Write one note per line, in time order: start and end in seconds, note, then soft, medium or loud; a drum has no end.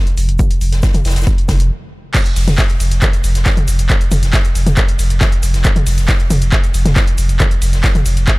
0.07 closed hi-hat medium
0.17 0.28 F1 loud
0.17 open hi-hat loud
0.17 shaker medium
0.29 0.39 F1 medium
0.29 closed hi-hat medium
0.39 kick loud
0.39 closed hi-hat medium
0.39 mid tom medium
0.39 shaker medium
0.51 closed hi-hat medium
0.61 0.72 F1 loud
0.61 open hi-hat loud
0.61 shaker medium
0.72 0.83 F1 medium
0.72 snare soft
0.72 closed hi-hat medium
0.82 kick loud
0.82 snare loud
0.82 closed hi-hat medium
0.82 shaker loud
0.94 closed hi-hat soft
0.94 closed hi-hat medium
0.94 mid tom medium
1.05 1.16 F1 loud
1.05 snare medium
1.05 open hi-hat loud
1.05 shaker medium
1.10 snare loud
1.10 shaker medium
1.15 1.27 F1 medium
1.15 snare medium
1.15 closed hi-hat medium
1.15 shaker medium
1.21 snare medium
1.21 shaker medium
1.27 kick loud
1.27 closed hi-hat medium
1.38 closed hi-hat medium
1.48 1.60 F1 loud
1.48 kick medium
1.48 snare loud
1.48 open hi-hat loud
1.48 mid tom medium
1.48 shaker medium
1.60 1.71 F1 medium
1.60 closed hi-hat medium
2.15 kick loud
2.15 clap loud
2.15 closed hi-hat medium
2.15 crash loud
2.15 shaker soft
2.15 shaker medium
2.26 closed hi-hat medium
2.26 shaker soft
2.36 2.47 F1 loud
2.36 open hi-hat loud
2.36 open hi-hat medium
2.36 ride medium
2.36 shaker medium
2.48 2.58 F1 medium
2.48 snare soft
2.48 closed hi-hat medium
2.48 mid tom medium
2.48 shaker soft
2.58 kick loud
2.58 snare loud
2.58 clap loud
2.58 closed hi-hat medium
2.58 shaker medium
2.58 shaker soft
2.70 closed hi-hat medium
2.70 shaker soft
2.80 2.91 F1 loud
2.80 open hi-hat loud
2.80 ride medium
2.80 shaker medium
2.91 3.02 F1 medium
2.91 closed hi-hat medium
2.91 shaker soft
3.02 kick loud
3.02 clap loud
3.02 closed hi-hat medium
3.02 mid tom medium
3.02 shaker medium
3.02 shaker soft
3.13 closed hi-hat soft
3.13 closed hi-hat medium
3.13 shaker soft
3.24 3.35 F1 loud
3.24 open hi-hat loud
3.24 ride medium
3.24 shaker medium
3.35 3.46 F1 medium
3.35 snare medium
3.35 closed hi-hat medium
3.35 shaker soft
3.46 kick loud
3.46 snare loud
3.46 clap loud
3.46 closed hi-hat medium
3.46 shaker soft
3.46 shaker medium
3.57 closed hi-hat medium
3.57 mid tom medium
3.57 shaker soft
3.68 3.79 F1 loud
3.68 open hi-hat loud
3.68 ride medium
3.68 shaker medium
3.79 3.90 F1 medium
3.79 closed hi-hat medium
3.79 shaker soft
3.90 kick loud
3.90 clap loud
3.90 closed hi-hat medium
3.90 shaker soft
3.90 shaker medium
4.01 closed hi-hat medium
4.01 shaker soft
4.11 4.22 F1 loud
4.11 open hi-hat loud
4.11 mid tom medium
4.11 ride medium
4.11 shaker medium
4.23 4.33 F1 medium
4.23 snare soft
4.23 closed hi-hat medium
4.23 shaker soft
4.33 kick loud
4.33 snare loud
4.33 clap loud
4.33 closed hi-hat medium
4.33 shaker loud
4.33 shaker soft
4.44 closed hi-hat soft
4.44 closed hi-hat medium
4.44 shaker soft
4.55 4.66 F1 medium
4.55 open hi-hat loud
4.55 ride medium
4.55 shaker medium
4.67 4.77 F1 medium
4.67 closed hi-hat medium
4.67 closed hi-hat soft
4.67 mid tom medium
4.67 shaker soft
4.77 kick loud
4.77 clap loud
4.77 closed hi-hat medium
4.77 shaker medium
4.77 shaker soft
4.88 closed hi-hat medium
4.88 shaker soft
4.99 5.10 F1 loud
4.99 open hi-hat loud
4.99 ride medium
4.99 shaker medium
5.10 5.21 F1 medium
5.10 closed hi-hat medium
5.10 shaker soft
5.21 kick loud
5.21 snare loud
5.21 clap loud
5.21 closed hi-hat medium
5.21 mid tom medium
5.21 shaker soft
5.21 shaker medium
5.32 closed hi-hat medium
5.32 shaker soft
5.43 5.53 F1 loud
5.43 open hi-hat loud
5.43 ride medium
5.43 shaker medium
5.54 5.65 F1 medium
5.54 snare soft
5.54 closed hi-hat medium
5.54 shaker soft
5.64 kick loud
5.64 clap loud
5.64 closed hi-hat medium
5.64 shaker medium
5.64 shaker soft
5.76 closed hi-hat medium
5.76 mid tom medium
5.76 shaker soft
5.86 5.97 F1 loud
5.86 open hi-hat medium
5.86 open hi-hat loud
5.86 ride medium
5.86 shaker medium
5.98 6.08 F1 medium
5.98 snare soft
5.98 closed hi-hat medium
5.98 shaker soft
6.09 kick loud
6.09 snare loud
6.09 clap loud
6.09 closed hi-hat medium
6.09 shaker soft
6.09 shaker loud
6.20 closed hi-hat medium
6.20 shaker soft
6.30 6.41 F1 loud
6.30 open hi-hat loud
6.30 mid tom medium
6.30 ride medium
6.30 shaker medium
6.42 6.52 F1 medium
6.42 closed hi-hat medium
6.42 shaker soft
6.52 kick loud
6.52 clap loud
6.52 closed hi-hat medium
6.52 shaker soft
6.52 shaker medium
6.64 closed hi-hat medium
6.64 closed hi-hat soft
6.64 shaker soft
6.74 6.85 F1 loud
6.74 open hi-hat loud
6.74 ride medium
6.74 shaker medium
6.86 6.96 F1 medium
6.86 snare medium
6.86 closed hi-hat medium
6.86 mid tom medium
6.86 shaker soft
6.96 kick loud
6.96 snare loud
6.96 clap loud
6.96 closed hi-hat medium
6.96 shaker soft
6.96 shaker medium
7.07 closed hi-hat medium
7.07 shaker soft
7.18 7.29 F1 loud
7.18 open hi-hat loud
7.18 ride medium
7.18 shaker medium
7.29 7.40 F1 medium
7.29 closed hi-hat medium
7.29 shaker soft
7.40 kick loud
7.40 clap loud
7.40 closed hi-hat medium
7.40 mid tom medium
7.40 shaker soft
7.40 shaker medium
7.51 closed hi-hat medium
7.51 shaker soft
7.62 7.73 F1 loud
7.62 open hi-hat loud
7.62 ride medium
7.62 shaker medium
7.73 7.84 F1 medium
7.73 snare soft
7.73 closed hi-hat medium
7.73 shaker soft
7.84 kick loud
7.84 snare loud
7.84 clap loud
7.84 closed hi-hat medium
7.84 shaker soft
7.84 shaker loud
7.95 closed hi-hat medium
7.95 closed hi-hat soft
7.95 mid tom medium
7.95 shaker soft
8.05 8.16 F1 loud
8.05 open hi-hat loud
8.05 ride medium
8.05 shaker medium
8.17 8.27 F1 medium
8.17 closed hi-hat soft
8.17 closed hi-hat medium
8.17 shaker soft
8.27 kick loud
8.27 clap loud
8.27 closed hi-hat medium
8.27 shaker medium
8.27 shaker soft